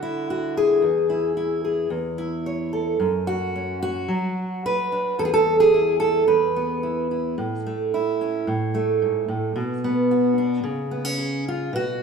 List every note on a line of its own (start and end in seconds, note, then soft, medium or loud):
0.00 0.83 D3 soft
0.00 0.84 E4 medium
0.00 0.29 F#4 medium
0.30 0.57 F#4 medium
0.57 1.63 G#4 medium
0.82 1.89 E2 medium
1.10 1.36 E4 soft
1.37 1.88 E4 soft
1.65 1.88 G#4 soft
1.90 2.99 E2 medium
2.18 2.97 E4 soft
2.46 2.97 C#5 soft
2.73 2.97 A4 soft
3.00 4.06 F#2 medium
3.27 3.81 F#4 medium
3.56 4.06 C#4 soft
3.83 4.64 F#4 medium
4.08 5.15 F#3 medium
4.66 5.19 B4 medium
4.92 5.16 D4 soft
5.19 6.27 E2 medium
5.19 5.25 A4 medium
5.25 5.32 G#4 medium
5.34 5.60 A4 medium
5.60 5.99 G#4 medium
5.74 6.25 E4 soft
6.00 6.27 A4 medium
6.28 7.38 E2 soft
6.28 7.38 B4 medium
6.56 7.35 B3 soft
6.83 7.10 E4 soft
7.11 7.35 E4 soft
7.38 8.46 A2 medium
7.67 8.45 A3 soft
7.94 8.48 E4 soft
8.21 8.45 C#4 soft
8.47 9.27 A2 medium
8.75 9.53 A3 soft
9.02 9.29 G#2 soft
9.28 9.55 A2 soft
9.56 10.61 B2 medium
9.84 10.62 B3 soft
10.11 10.62 F#4 soft
10.38 10.62 D4 soft
10.64 11.69 C#3 medium
10.91 11.05 B3 soft
11.05 11.46 C#4 soft
11.18 11.70 G#4 soft
11.48 11.74 F4 medium
11.73 12.03 B2 medium
11.73 12.03 F#4 medium